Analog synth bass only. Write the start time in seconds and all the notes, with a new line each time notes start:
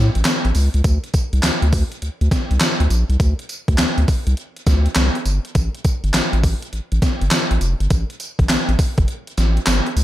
Already playing: A2
0.16 A1
0.45 A1
0.55 C#2
0.74 C#2
0.85 D2
1.33 C2
1.44 D2
1.62 D2
2.02 D2
2.21 D2
2.51 C2
2.80 D2
2.90 A#1
3.09 C2
3.20 D2
3.68 D2
3.79 D2
3.98 D2
4.27 C2
4.67 D2
4.96 C2
5.26 G1
5.55 A1
6.04 G1
6.14 A1
6.33 A1
6.73 A1
6.92 A1
7.22 G1
7.51 A1
7.61 F1
7.80 G1
7.91 A1
8.39 A1
8.50 A1
8.69 A1
8.98 G1
9.38 A1
9.67 G1
9.96 C#2